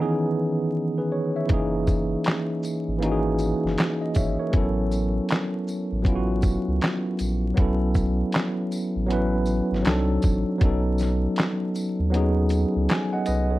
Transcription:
0.00 1.51 D#3 medium
0.00 1.46 E3 medium
0.00 1.51 B3 medium
0.00 1.50 C#4 medium
0.00 1.52 D#4 medium
0.00 0.02 G#4 medium
0.00 0.76 G#4 medium
0.98 1.12 G#4 medium
0.98 1.11 B4 medium
1.12 1.34 C#5 medium
1.36 1.72 C#5 soft
1.36 1.72 E5 medium
1.46 2.48 E3 medium
1.46 2.49 A#3 medium
1.46 2.49 C#4 medium
1.46 kick loud
1.46 closed hi-hat medium
1.50 2.16 F#1 loud
1.50 2.50 D#4 medium
1.50 2.51 G#4 medium
1.87 kick medium
1.87 tambourine soft
1.87 shaker soft
2.24 snare loud
2.24 clap medium
2.24 closed hi-hat medium
2.63 tambourine medium
2.63 shaker soft
2.88 3.54 G#1 medium
2.99 4.00 E3 medium
2.99 4.01 A#3 medium
2.99 4.01 C#4 medium
2.99 closed hi-hat medium
3.03 4.02 D#4 medium
3.03 3.12 F#4 medium
3.12 4.06 G#4 medium
3.39 tambourine soft
3.39 shaker medium
3.64 3.76 F#1 loud
3.64 snare soft
3.78 snare loud
3.78 clap medium
3.78 closed hi-hat medium
4.01 4.15 D#5 medium
4.15 4.37 G#1 medium
4.15 4.38 C#5 medium
4.15 4.38 E5 medium
4.15 kick medium
4.15 closed hi-hat soft
4.15 tambourine medium
4.15 shaker soft
4.40 4.76 A#4 medium
4.40 4.75 C#5 medium
4.51 5.20 A1 loud
4.51 5.52 F#3 medium
4.51 5.53 B3 medium
4.51 5.54 C#4 medium
4.51 kick loud
4.51 closed hi-hat medium
4.56 5.54 E4 medium
4.56 5.55 A4 medium
4.91 tambourine medium
4.91 shaker soft
5.29 snare loud
5.29 clap medium
5.29 closed hi-hat medium
5.67 tambourine medium
5.67 shaker soft
5.92 6.58 A1 medium
6.02 7.03 F#3 medium
6.02 7.04 B3 medium
6.02 7.05 C#4 medium
6.02 kick medium
6.02 closed hi-hat medium
6.07 7.06 E4 medium
6.07 6.15 F4 medium
6.16 7.10 F#4 medium
6.42 kick medium
6.42 tambourine soft
6.42 shaker soft
6.68 6.80 C#2 loud
6.81 snare loud
6.81 clap medium
6.81 closed hi-hat soft
7.19 7.53 A#1 medium
7.19 closed hi-hat soft
7.19 tambourine medium
7.19 shaker soft
7.54 8.24 B1 loud
7.54 8.55 F#3 medium
7.54 8.56 B3 medium
7.54 8.57 C#4 medium
7.54 kick loud
7.54 closed hi-hat medium
7.59 8.58 E4 medium
7.59 8.59 A4 medium
7.95 kick medium
7.95 tambourine soft
7.95 shaker soft
8.32 snare loud
8.32 clap medium
8.32 closed hi-hat medium
8.71 tambourine medium
8.71 shaker soft
8.96 9.61 A1 medium
9.06 9.81 F#3 medium
9.06 9.85 B3 medium
9.06 9.85 C#4 medium
9.10 9.86 E4 medium
9.10 9.87 B4 medium
9.10 closed hi-hat medium
9.46 tambourine soft
9.46 shaker soft
9.72 9.84 G#1 loud
9.72 snare soft
9.82 10.19 C2 loud
9.82 10.48 F#3 medium
9.82 10.49 C4 medium
9.82 10.50 D4 medium
9.82 closed hi-hat medium
9.87 10.51 D#4 medium
9.87 10.52 A4 medium
9.87 snare loud
9.87 clap medium
10.22 10.44 A1 medium
10.22 kick medium
10.22 closed hi-hat soft
10.22 tambourine medium
10.22 shaker soft
10.58 11.27 B1 loud
10.58 11.59 F#3 medium
10.58 11.60 B3 medium
10.58 11.61 C#4 medium
10.58 kick loud
10.58 closed hi-hat medium
10.63 11.62 D#4 medium
10.63 11.63 A4 medium
10.98 snare soft
10.98 tambourine soft
10.98 shaker soft
11.36 snare loud
11.36 clap medium
11.36 closed hi-hat medium
11.75 tambourine medium
11.75 shaker soft
12.00 12.65 D#2 medium
12.10 13.11 F#3 medium
12.10 13.12 B3 medium
12.10 13.13 C#4 medium
12.10 closed hi-hat medium
12.15 13.14 D#4 medium
12.15 12.91 G#4 medium
12.49 closed hi-hat medium
12.49 tambourine soft
12.49 shaker soft
12.76 12.88 C#2 medium
12.89 13.12 G#5 medium
12.89 snare loud
12.89 clap medium
12.89 closed hi-hat medium
13.13 13.25 D#5 medium
13.13 13.26 F#5 medium
13.26 13.59 C2 medium
13.26 13.50 B4 medium
13.26 13.49 D#5 medium
13.26 closed hi-hat soft
13.26 tambourine medium
13.26 shaker soft
13.51 13.59 A4 soft
13.51 13.59 C#5 medium

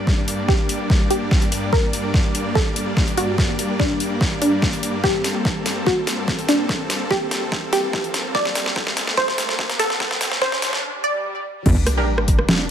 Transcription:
0.00 10.79 G2 medium
0.00 10.79 G3 medium
0.00 10.79 A#3 medium
0.00 0.41 D4 medium
0.00 5.00 D4 medium
0.00 5.02 D5 medium
0.07 kick medium
0.07 snare soft
0.28 closed hi-hat medium
0.48 1.03 G4 medium
0.48 kick medium
0.48 snare soft
0.69 closed hi-hat medium
0.90 kick loud
0.90 snare medium
1.11 1.65 G4 medium
1.11 closed hi-hat medium
1.31 kick medium
1.31 snare medium
1.42 closed hi-hat soft
1.52 closed hi-hat medium
1.73 2.47 A#4 medium
1.73 kick medium
1.73 snare medium
1.93 closed hi-hat medium
2.14 kick loud
2.14 snare medium
2.35 closed hi-hat medium
2.55 3.09 A4 medium
2.55 kick medium
2.55 snare medium
2.76 closed hi-hat medium
2.97 kick medium
2.97 snare medium
3.08 closed hi-hat soft
3.17 3.72 F#4 medium
3.17 closed hi-hat medium
3.38 kick medium
3.38 snare medium
3.59 closed hi-hat medium
3.80 4.34 D4 loud
3.80 kick loud
3.80 snare medium
4.00 closed hi-hat medium
4.21 kick medium
4.21 snare medium
4.42 4.96 D4 medium
4.42 closed hi-hat medium
4.62 kick medium
4.62 snare medium
4.73 closed hi-hat soft
4.83 closed hi-hat medium
5.04 10.79 C4 medium
5.04 5.78 G4 medium
5.04 10.81 A4 medium
5.04 kick medium
5.04 snare medium
5.04 riser medium
5.24 snare medium
5.24 closed hi-hat medium
5.45 kick loud
5.45 snare medium
5.66 snare medium
5.66 closed hi-hat medium
5.87 6.41 F#4 loud
5.87 kick medium
5.87 snare medium
6.07 snare medium
6.07 closed hi-hat medium
6.28 kick medium
6.28 snare medium
6.39 closed hi-hat soft
6.49 7.03 D4 medium
6.49 snare medium
6.49 closed hi-hat medium
6.69 kick medium
6.69 snare medium
6.90 snare medium
6.90 closed hi-hat medium
7.11 7.65 G4 medium
7.11 kick loud
7.11 snare medium
7.31 snare medium
7.31 closed hi-hat medium
7.52 kick loud
7.52 snare medium
7.73 8.27 G4 medium
7.73 snare medium
7.73 closed hi-hat medium
7.93 kick loud
7.93 snare medium
8.04 closed hi-hat soft
8.14 snare medium
8.14 closed hi-hat medium
8.35 9.10 D5 loud
8.35 kick loud
8.35 snare medium
8.45 snare medium
8.55 snare medium
8.55 closed hi-hat medium
8.66 snare medium
8.76 kick loud
8.76 snare medium
8.87 snare medium
8.97 snare loud
8.97 closed hi-hat medium
9.07 snare medium
9.17 9.72 C5 loud
9.17 kick loud
9.17 snare loud
9.28 snare medium
9.38 snare loud
9.38 closed hi-hat medium
9.49 snare medium
9.59 kick medium
9.59 snare loud
9.70 snare medium
9.70 closed hi-hat soft
9.79 10.34 A4 loud
9.79 snare loud
9.79 closed hi-hat medium
9.90 snare medium
10.00 kick loud
10.00 snare loud
10.11 snare medium
10.21 snare loud
10.21 closed hi-hat medium
10.32 snare medium
10.42 10.96 C5 loud
10.42 kick loud
10.42 snare loud
10.52 snare medium
10.62 snare loud
10.62 closed hi-hat medium
10.73 snare medium
10.83 swell medium
11.04 11.58 D5 loud
11.66 11.75 G1 medium
11.66 12.71 G3 medium
11.66 12.71 A#3 medium
11.66 12.71 D4 medium
11.66 kick loud
11.66 crash loud
11.66 sub drop medium
11.87 cross-stick medium
11.87 closed hi-hat medium
11.97 12.05 D4 medium
11.97 12.05 G4 medium
11.97 12.05 A#4 medium
12.18 cross-stick medium
12.28 kick medium
12.28 closed hi-hat medium
12.39 cross-stick medium
12.49 snare loud

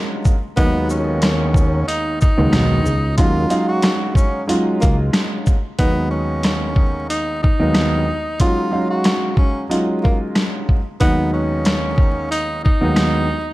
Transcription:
0.00 0.32 F#3 medium
0.00 0.32 G#3 loud
0.00 0.32 C#4 medium
0.00 0.33 D#4 medium
0.00 0.33 F4 loud
0.25 kick medium
0.25 shaker medium
0.57 2.22 D#2 loud
0.57 1.84 D#2 loud
0.57 2.23 F#3 medium
0.57 2.23 G#3 medium
0.57 0.86 B3 loud
0.57 2.23 B3 medium
0.57 2.23 D#4 loud
0.57 kick loud
0.57 closed hi-hat medium
0.90 1.84 C#4 medium
0.90 shaker medium
1.22 cross-stick loud
1.22 snare loud
1.22 closed hi-hat medium
1.54 kick loud
1.54 shaker medium
1.88 2.17 D#4 medium
1.88 closed hi-hat medium
2.21 3.15 D#4 loud
2.21 kick loud
2.21 shaker medium
2.38 2.51 C#2 medium
2.38 2.82 D#2 loud
2.38 2.82 F#3 medium
2.38 2.82 G#3 medium
2.38 2.82 B3 medium
2.38 2.82 D#4 loud
2.53 2.81 B1 loud
2.53 cross-stick medium
2.53 snare loud
2.53 closed hi-hat medium
2.86 3.20 C#2 medium
2.86 shaker medium
3.17 3.46 D#2 loud
3.17 3.48 F#3 medium
3.17 3.48 G#3 medium
3.17 3.49 C#4 medium
3.17 3.49 D#4 medium
3.17 3.65 F4 loud
3.17 3.49 F4 loud
3.17 kick loud
3.17 closed hi-hat medium
3.49 4.41 F#3 medium
3.49 4.41 G#3 medium
3.49 4.41 C#4 medium
3.49 4.41 D#4 medium
3.49 4.42 F5 loud
3.49 closed hi-hat medium
3.49 shaker medium
3.69 4.13 F#4 medium
3.82 cross-stick loud
3.82 snare loud
3.82 closed hi-hat medium
4.15 4.45 C#4 medium
4.15 kick loud
4.15 shaker medium
4.47 5.54 F#3 medium
4.47 5.54 G#3 loud
4.47 5.54 C#4 medium
4.47 5.54 D#4 medium
4.47 5.54 F4 loud
4.47 closed hi-hat medium
4.81 5.10 C#2 medium
4.81 4.97 A#3 medium
4.81 kick loud
4.81 closed hi-hat medium
4.81 shaker medium
5.13 cross-stick medium
5.13 snare loud
5.13 closed hi-hat medium
5.47 kick medium
5.47 shaker medium
5.79 7.44 D#2 medium
5.79 7.44 F#3 medium
5.79 7.44 G#3 medium
5.79 6.08 B3 loud
5.79 7.45 B3 medium
5.79 7.45 D#4 loud
5.79 kick loud
5.79 closed hi-hat medium
6.11 7.05 C#4 medium
6.43 cross-stick medium
6.43 snare loud
6.43 closed hi-hat medium
6.76 kick loud
7.10 7.39 D#4 medium
7.10 closed hi-hat medium
7.43 8.36 D#4 medium
7.43 kick loud
7.60 8.04 D#2 medium
7.60 8.04 F#3 medium
7.60 8.04 G#3 medium
7.60 8.04 B3 medium
7.60 8.04 D#4 medium
7.74 cross-stick medium
7.74 snare loud
7.74 closed hi-hat medium
8.40 8.70 F#3 medium
8.40 8.70 G#3 medium
8.40 8.71 C#4 medium
8.40 8.71 D#4 medium
8.40 8.88 F4 loud
8.40 8.71 F4 medium
8.40 kick loud
8.40 closed hi-hat medium
8.71 9.63 F#3 medium
8.71 9.63 G#3 medium
8.71 9.63 C#4 medium
8.71 9.63 D#4 medium
8.71 9.64 F5 loud
8.91 9.35 F#4 medium
9.04 cross-stick medium
9.04 snare loud
9.04 closed hi-hat medium
9.37 9.67 C#4 medium
9.37 kick loud
9.69 10.76 F#3 medium
9.69 10.76 G#3 medium
9.69 10.76 C#4 medium
9.69 10.76 D#4 medium
9.69 10.76 F4 loud
9.69 closed hi-hat medium
10.03 10.19 A#3 medium
10.03 kick loud
10.35 cross-stick medium
10.35 snare loud
10.35 closed hi-hat medium
10.69 kick medium
11.00 12.66 D#2 medium
11.00 12.66 F#3 medium
11.00 12.66 G#3 medium
11.00 11.30 B3 loud
11.00 12.66 B3 medium
11.00 12.67 D#4 loud
11.00 kick loud
11.00 closed hi-hat medium
11.34 12.27 C#4 medium
11.65 cross-stick medium
11.65 snare loud
11.65 closed hi-hat medium
11.98 kick loud
12.31 12.61 D#4 medium
12.31 closed hi-hat medium
12.65 13.53 D#4 medium
12.65 kick medium
12.81 13.25 D#2 medium
12.81 13.25 F#3 medium
12.81 13.26 G#3 medium
12.81 13.26 B3 medium
12.81 13.26 D#4 loud
12.96 cross-stick medium
12.96 snare loud
12.96 closed hi-hat medium

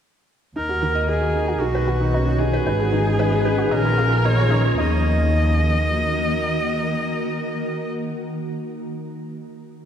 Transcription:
0.56 1.59 D#2 medium
0.56 3.72 D#3 medium
0.56 0.64 D#4 medium
0.56 0.65 D#4 medium
0.56 1.05 A#4 medium
0.69 0.82 F#4 medium
0.69 0.76 G#4 medium
0.82 0.89 D#3 medium
0.82 0.95 A#4 medium
0.95 1.03 D#5 medium
1.00 3.08 F#4 medium
1.08 1.13 D#4 medium
1.08 1.62 G#4 medium
1.08 1.21 A#4 medium
1.21 1.29 F#4 medium
1.35 1.43 D#4 medium
1.48 1.59 F#4 medium
1.48 1.52 F#4 medium
1.60 2.65 B1 medium
1.60 1.65 D#4 medium
1.60 1.74 F#4 medium
1.60 2.41 F#4 medium
1.75 1.82 B4 medium
1.87 2.00 F#4 medium
1.87 1.94 F#4 medium
1.94 3.09 C#4 medium
2.01 2.08 D#4 medium
2.09 3.72 B4 medium
2.14 2.22 C#4 medium
2.14 2.18 D#4 medium
2.27 2.40 D#4 medium
2.39 2.44 D#4 medium
2.39 2.53 F#4 medium
2.39 3.73 G#4 loud
2.53 2.61 B4 medium
2.67 3.70 G#1 medium
2.67 2.76 D#4 medium
2.67 2.79 B4 medium
2.80 3.72 B3 medium
2.80 2.86 G#4 medium
2.80 2.88 G#4 medium
2.93 2.99 D#3 loud
2.93 3.01 D#4 medium
3.06 3.19 G#4 medium
3.06 4.78 G#4 medium
3.19 3.23 D#4 medium
3.19 3.32 B4 loud
3.32 3.40 D#5 medium
3.45 3.58 B4 loud
3.58 3.62 F#4 medium
3.58 3.66 G#4 medium
3.71 4.75 A#1 medium
3.71 4.78 F3 medium
3.71 3.79 C#4 medium
3.71 3.76 D#4 medium
3.71 4.27 A#4 loud
3.84 3.97 F4 medium
3.98 4.04 F4 medium
3.98 4.11 G#4 loud
4.12 4.19 A#4 loud
4.24 4.29 D#4 medium
4.24 4.37 G#4 loud
4.24 4.65 C#5 loud
4.38 4.46 F4 medium
4.50 4.59 C#4 medium
4.50 4.55 D#4 medium
4.65 4.77 F4 medium
4.77 6.32 D#2 loud
4.77 7.89 D#3 medium
4.77 5.02 D#4 medium
4.77 7.91 D#5 loud
4.86 7.98 A#3 medium
4.93 8.05 F#4 medium
5.02 8.14 A#4 medium

